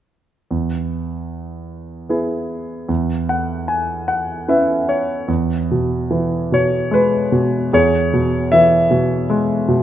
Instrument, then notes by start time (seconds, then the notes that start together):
grand piano
0.51 E2
2.09 B3 E4 G#4
2.89 E2
3.29 F#5
3.68 G#5
4.08 F#5
4.48 C#4 E4 B4 E5
4.89 C#5
5.28 E2
5.71 B2
6.11 E3
6.52 B2 C#5
6.91 G#3 B4
7.32 B2
7.73 E2 G#4 C#5
8.13 B2
8.52 E3 E5
8.91 B2
9.30 G#3
9.68 B2